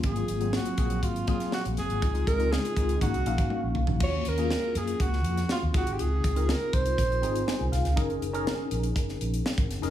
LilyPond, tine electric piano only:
\new Staff \with { instrumentName = "Tine electric piano" } { \time 4/4 \key des \major \tempo 4 = 121 << { r1 | r1 | r1 | r2. aes''8 f''8 |
r1 | } \\ { <ges bes c' f'>16 <ges bes c' f'>16 r16 <ges bes c' aes'>8 r16 <ges bes c' aes'>8. r16 <ges bes c' aes'>4 r8 | <aes c' ees' f'>16 <aes c' ees' f'>16 r16 <aes c' ees' f'>8 r16 <aes c' ees' f'>8 <bes des' ees' ges'>8 <bes des' ees' f''>4 r8 | <bes des' f' ges'>8 r16 <bes des' f' aes'>4. r4 r16 <c' ees' f' aes'>8~ | <c' ees' f' aes'>8 r16 <c' ees' f' bes'>4~ <c' ees' f' bes'>16 r8 <c' ees' f' aes'>4 r8 |
<des' ees' aes' bes'>8 r16 <des' ees' aes' bes'>4. r4. <des' ees' aes' bes'>16 | } >> }